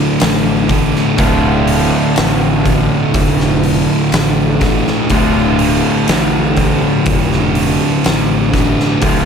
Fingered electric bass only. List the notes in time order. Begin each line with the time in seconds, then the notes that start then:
0.21 A1
1.19 D1
2.17 A1
3.14 F1
4.13 A1
5.11 D1
6.08 A1
7.06 F1
8.05 A1
9.03 D1